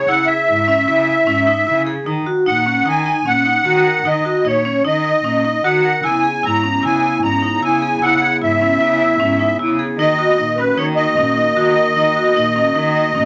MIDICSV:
0, 0, Header, 1, 5, 480
1, 0, Start_track
1, 0, Tempo, 396040
1, 103, Time_signature, 5, 2, 24, 8
1, 16060, End_track
2, 0, Start_track
2, 0, Title_t, "Accordion"
2, 0, Program_c, 0, 21
2, 73, Note_on_c, 0, 78, 92
2, 319, Note_on_c, 0, 76, 97
2, 336, Note_off_c, 0, 78, 0
2, 2207, Note_off_c, 0, 76, 0
2, 2995, Note_on_c, 0, 78, 86
2, 3488, Note_off_c, 0, 78, 0
2, 3496, Note_on_c, 0, 80, 93
2, 3966, Note_on_c, 0, 78, 94
2, 3979, Note_off_c, 0, 80, 0
2, 4928, Note_on_c, 0, 75, 83
2, 4949, Note_off_c, 0, 78, 0
2, 5408, Note_on_c, 0, 73, 81
2, 5415, Note_off_c, 0, 75, 0
2, 5849, Note_off_c, 0, 73, 0
2, 5896, Note_on_c, 0, 75, 91
2, 6839, Note_on_c, 0, 78, 84
2, 6875, Note_off_c, 0, 75, 0
2, 7327, Note_on_c, 0, 80, 93
2, 7332, Note_off_c, 0, 78, 0
2, 7815, Note_off_c, 0, 80, 0
2, 7816, Note_on_c, 0, 82, 99
2, 8299, Note_off_c, 0, 82, 0
2, 8311, Note_on_c, 0, 80, 94
2, 8740, Note_off_c, 0, 80, 0
2, 8773, Note_on_c, 0, 82, 97
2, 9257, Note_off_c, 0, 82, 0
2, 9266, Note_on_c, 0, 80, 99
2, 9731, Note_on_c, 0, 78, 95
2, 9743, Note_off_c, 0, 80, 0
2, 10168, Note_off_c, 0, 78, 0
2, 10217, Note_on_c, 0, 76, 88
2, 11594, Note_off_c, 0, 76, 0
2, 12108, Note_on_c, 0, 75, 108
2, 12813, Note_on_c, 0, 71, 89
2, 12850, Note_off_c, 0, 75, 0
2, 13054, Note_on_c, 0, 73, 93
2, 13068, Note_off_c, 0, 71, 0
2, 13165, Note_off_c, 0, 73, 0
2, 13282, Note_on_c, 0, 75, 103
2, 16060, Note_off_c, 0, 75, 0
2, 16060, End_track
3, 0, Start_track
3, 0, Title_t, "Vibraphone"
3, 0, Program_c, 1, 11
3, 104, Note_on_c, 1, 64, 83
3, 280, Note_off_c, 1, 64, 0
3, 339, Note_on_c, 1, 68, 63
3, 518, Note_off_c, 1, 68, 0
3, 586, Note_on_c, 1, 64, 73
3, 762, Note_off_c, 1, 64, 0
3, 823, Note_on_c, 1, 61, 73
3, 1001, Note_off_c, 1, 61, 0
3, 1067, Note_on_c, 1, 64, 81
3, 1243, Note_off_c, 1, 64, 0
3, 1307, Note_on_c, 1, 64, 67
3, 1484, Note_off_c, 1, 64, 0
3, 1538, Note_on_c, 1, 61, 81
3, 1718, Note_off_c, 1, 61, 0
3, 1781, Note_on_c, 1, 63, 74
3, 1960, Note_off_c, 1, 63, 0
3, 2021, Note_on_c, 1, 64, 76
3, 2200, Note_off_c, 1, 64, 0
3, 2261, Note_on_c, 1, 68, 73
3, 2441, Note_off_c, 1, 68, 0
3, 2502, Note_on_c, 1, 63, 83
3, 2682, Note_off_c, 1, 63, 0
3, 2746, Note_on_c, 1, 66, 64
3, 2924, Note_off_c, 1, 66, 0
3, 2986, Note_on_c, 1, 63, 76
3, 3164, Note_off_c, 1, 63, 0
3, 3226, Note_on_c, 1, 61, 71
3, 3404, Note_off_c, 1, 61, 0
3, 3464, Note_on_c, 1, 63, 77
3, 3643, Note_off_c, 1, 63, 0
3, 3706, Note_on_c, 1, 63, 74
3, 3885, Note_off_c, 1, 63, 0
3, 3945, Note_on_c, 1, 61, 77
3, 4124, Note_off_c, 1, 61, 0
3, 4186, Note_on_c, 1, 63, 71
3, 4365, Note_off_c, 1, 63, 0
3, 4429, Note_on_c, 1, 66, 83
3, 4607, Note_off_c, 1, 66, 0
3, 4666, Note_on_c, 1, 70, 71
3, 4845, Note_off_c, 1, 70, 0
3, 4912, Note_on_c, 1, 63, 82
3, 5089, Note_off_c, 1, 63, 0
3, 5151, Note_on_c, 1, 66, 62
3, 5329, Note_off_c, 1, 66, 0
3, 5394, Note_on_c, 1, 63, 72
3, 5571, Note_off_c, 1, 63, 0
3, 5640, Note_on_c, 1, 61, 70
3, 5814, Note_off_c, 1, 61, 0
3, 5873, Note_on_c, 1, 63, 78
3, 6050, Note_off_c, 1, 63, 0
3, 6116, Note_on_c, 1, 63, 65
3, 6292, Note_off_c, 1, 63, 0
3, 6355, Note_on_c, 1, 61, 78
3, 6531, Note_off_c, 1, 61, 0
3, 6600, Note_on_c, 1, 63, 72
3, 6775, Note_off_c, 1, 63, 0
3, 6841, Note_on_c, 1, 66, 79
3, 7015, Note_off_c, 1, 66, 0
3, 7081, Note_on_c, 1, 70, 67
3, 7255, Note_off_c, 1, 70, 0
3, 7315, Note_on_c, 1, 64, 79
3, 7492, Note_off_c, 1, 64, 0
3, 7558, Note_on_c, 1, 68, 61
3, 7733, Note_off_c, 1, 68, 0
3, 7795, Note_on_c, 1, 64, 72
3, 7971, Note_off_c, 1, 64, 0
3, 8042, Note_on_c, 1, 61, 70
3, 8216, Note_off_c, 1, 61, 0
3, 8277, Note_on_c, 1, 64, 80
3, 8453, Note_off_c, 1, 64, 0
3, 8518, Note_on_c, 1, 64, 65
3, 8693, Note_off_c, 1, 64, 0
3, 8762, Note_on_c, 1, 61, 74
3, 8935, Note_off_c, 1, 61, 0
3, 9001, Note_on_c, 1, 63, 73
3, 9175, Note_off_c, 1, 63, 0
3, 9243, Note_on_c, 1, 64, 81
3, 9416, Note_off_c, 1, 64, 0
3, 9483, Note_on_c, 1, 68, 70
3, 9656, Note_off_c, 1, 68, 0
3, 9723, Note_on_c, 1, 64, 84
3, 9895, Note_off_c, 1, 64, 0
3, 9962, Note_on_c, 1, 68, 65
3, 10135, Note_off_c, 1, 68, 0
3, 10200, Note_on_c, 1, 64, 78
3, 10373, Note_off_c, 1, 64, 0
3, 10437, Note_on_c, 1, 61, 70
3, 10611, Note_off_c, 1, 61, 0
3, 10673, Note_on_c, 1, 64, 78
3, 10849, Note_off_c, 1, 64, 0
3, 10913, Note_on_c, 1, 64, 67
3, 11089, Note_off_c, 1, 64, 0
3, 11149, Note_on_c, 1, 61, 81
3, 11326, Note_off_c, 1, 61, 0
3, 11387, Note_on_c, 1, 63, 67
3, 11565, Note_off_c, 1, 63, 0
3, 11625, Note_on_c, 1, 64, 76
3, 11804, Note_off_c, 1, 64, 0
3, 11867, Note_on_c, 1, 68, 70
3, 12044, Note_off_c, 1, 68, 0
3, 12108, Note_on_c, 1, 63, 91
3, 12285, Note_off_c, 1, 63, 0
3, 12345, Note_on_c, 1, 66, 68
3, 12523, Note_off_c, 1, 66, 0
3, 12580, Note_on_c, 1, 63, 75
3, 12760, Note_off_c, 1, 63, 0
3, 12824, Note_on_c, 1, 61, 76
3, 13002, Note_off_c, 1, 61, 0
3, 13059, Note_on_c, 1, 63, 82
3, 13239, Note_off_c, 1, 63, 0
3, 13302, Note_on_c, 1, 63, 68
3, 13480, Note_off_c, 1, 63, 0
3, 13538, Note_on_c, 1, 61, 78
3, 13718, Note_off_c, 1, 61, 0
3, 13784, Note_on_c, 1, 63, 69
3, 13961, Note_off_c, 1, 63, 0
3, 14018, Note_on_c, 1, 66, 83
3, 14198, Note_off_c, 1, 66, 0
3, 14258, Note_on_c, 1, 70, 67
3, 14438, Note_off_c, 1, 70, 0
3, 14500, Note_on_c, 1, 63, 84
3, 14679, Note_off_c, 1, 63, 0
3, 14741, Note_on_c, 1, 66, 65
3, 14919, Note_off_c, 1, 66, 0
3, 14981, Note_on_c, 1, 63, 75
3, 15160, Note_off_c, 1, 63, 0
3, 15223, Note_on_c, 1, 61, 69
3, 15401, Note_off_c, 1, 61, 0
3, 15461, Note_on_c, 1, 63, 78
3, 15639, Note_off_c, 1, 63, 0
3, 15699, Note_on_c, 1, 63, 66
3, 15878, Note_off_c, 1, 63, 0
3, 15935, Note_on_c, 1, 61, 79
3, 16060, Note_off_c, 1, 61, 0
3, 16060, End_track
4, 0, Start_track
4, 0, Title_t, "Woodwind section"
4, 0, Program_c, 2, 71
4, 7311, Note_on_c, 2, 64, 73
4, 7313, Note_on_c, 2, 49, 65
4, 7317, Note_on_c, 2, 59, 63
4, 12060, Note_off_c, 2, 64, 0
4, 12061, Note_off_c, 2, 49, 0
4, 12063, Note_off_c, 2, 59, 0
4, 12102, Note_on_c, 2, 66, 76
4, 12105, Note_on_c, 2, 51, 74
4, 12107, Note_on_c, 2, 58, 64
4, 16060, Note_off_c, 2, 51, 0
4, 16060, Note_off_c, 2, 58, 0
4, 16060, Note_off_c, 2, 66, 0
4, 16060, End_track
5, 0, Start_track
5, 0, Title_t, "Cello"
5, 0, Program_c, 3, 42
5, 104, Note_on_c, 3, 49, 88
5, 308, Note_off_c, 3, 49, 0
5, 590, Note_on_c, 3, 44, 83
5, 996, Note_off_c, 3, 44, 0
5, 1069, Note_on_c, 3, 49, 98
5, 1476, Note_off_c, 3, 49, 0
5, 1542, Note_on_c, 3, 44, 86
5, 1952, Note_off_c, 3, 44, 0
5, 2031, Note_on_c, 3, 49, 96
5, 2438, Note_off_c, 3, 49, 0
5, 2509, Note_on_c, 3, 51, 90
5, 2713, Note_off_c, 3, 51, 0
5, 2994, Note_on_c, 3, 46, 82
5, 3400, Note_off_c, 3, 46, 0
5, 3467, Note_on_c, 3, 51, 94
5, 3877, Note_off_c, 3, 51, 0
5, 3947, Note_on_c, 3, 46, 78
5, 4357, Note_off_c, 3, 46, 0
5, 4423, Note_on_c, 3, 51, 98
5, 4835, Note_off_c, 3, 51, 0
5, 4916, Note_on_c, 3, 51, 91
5, 5119, Note_off_c, 3, 51, 0
5, 5391, Note_on_c, 3, 46, 82
5, 5800, Note_off_c, 3, 46, 0
5, 5879, Note_on_c, 3, 51, 87
5, 6285, Note_off_c, 3, 51, 0
5, 6352, Note_on_c, 3, 46, 85
5, 6761, Note_off_c, 3, 46, 0
5, 6830, Note_on_c, 3, 51, 93
5, 7239, Note_off_c, 3, 51, 0
5, 7311, Note_on_c, 3, 49, 87
5, 7516, Note_off_c, 3, 49, 0
5, 7793, Note_on_c, 3, 44, 87
5, 8201, Note_off_c, 3, 44, 0
5, 8275, Note_on_c, 3, 49, 101
5, 8682, Note_off_c, 3, 49, 0
5, 8757, Note_on_c, 3, 44, 84
5, 9163, Note_off_c, 3, 44, 0
5, 9236, Note_on_c, 3, 49, 92
5, 9642, Note_off_c, 3, 49, 0
5, 9714, Note_on_c, 3, 49, 97
5, 9917, Note_off_c, 3, 49, 0
5, 10190, Note_on_c, 3, 44, 86
5, 10598, Note_off_c, 3, 44, 0
5, 10671, Note_on_c, 3, 49, 99
5, 11078, Note_off_c, 3, 49, 0
5, 11152, Note_on_c, 3, 44, 91
5, 11558, Note_off_c, 3, 44, 0
5, 11627, Note_on_c, 3, 49, 101
5, 12035, Note_off_c, 3, 49, 0
5, 12102, Note_on_c, 3, 51, 99
5, 12308, Note_off_c, 3, 51, 0
5, 12579, Note_on_c, 3, 46, 85
5, 12990, Note_off_c, 3, 46, 0
5, 13054, Note_on_c, 3, 51, 101
5, 13467, Note_off_c, 3, 51, 0
5, 13544, Note_on_c, 3, 46, 87
5, 13953, Note_off_c, 3, 46, 0
5, 14018, Note_on_c, 3, 51, 90
5, 14429, Note_off_c, 3, 51, 0
5, 14501, Note_on_c, 3, 51, 93
5, 14707, Note_off_c, 3, 51, 0
5, 14984, Note_on_c, 3, 46, 87
5, 15392, Note_off_c, 3, 46, 0
5, 15455, Note_on_c, 3, 51, 96
5, 15867, Note_off_c, 3, 51, 0
5, 15949, Note_on_c, 3, 46, 88
5, 16060, Note_off_c, 3, 46, 0
5, 16060, End_track
0, 0, End_of_file